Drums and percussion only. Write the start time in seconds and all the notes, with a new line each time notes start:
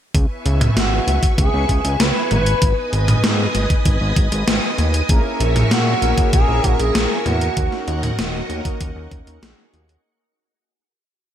0.15 kick, closed hi-hat
0.46 closed hi-hat
0.61 closed hi-hat, mid tom
0.77 snare, closed hi-hat
1.08 closed hi-hat
1.23 kick, closed hi-hat
1.38 kick, closed hi-hat
1.69 kick, closed hi-hat
1.85 closed hi-hat
2.00 snare, closed hi-hat
2.31 closed hi-hat, mid tom
2.46 closed hi-hat
2.62 kick, closed hi-hat
2.93 closed hi-hat
3.08 closed hi-hat, mid tom
3.24 snare, closed hi-hat
3.55 closed hi-hat
3.70 kick, closed hi-hat
3.86 kick, closed hi-hat
4.16 kick, closed hi-hat
4.32 closed hi-hat
4.48 snare, closed hi-hat
4.78 closed hi-hat
4.94 closed hi-hat
5.09 kick, closed hi-hat
5.40 closed hi-hat
5.56 closed hi-hat, mid tom
5.71 snare, closed hi-hat
6.02 closed hi-hat
6.18 kick, closed hi-hat
6.33 kick, closed hi-hat
6.64 kick, closed hi-hat
6.80 closed hi-hat
6.95 snare, closed hi-hat
7.26 closed hi-hat, mid tom
7.41 closed hi-hat
7.57 kick, closed hi-hat
7.72 snare
7.88 closed hi-hat
8.03 closed hi-hat, mid tom
8.19 snare, closed hi-hat
8.50 closed hi-hat
8.65 kick, closed hi-hat
8.81 kick, closed hi-hat
9.12 kick, closed hi-hat
9.27 closed hi-hat
9.43 snare, closed hi-hat
9.74 closed hi-hat
9.89 closed hi-hat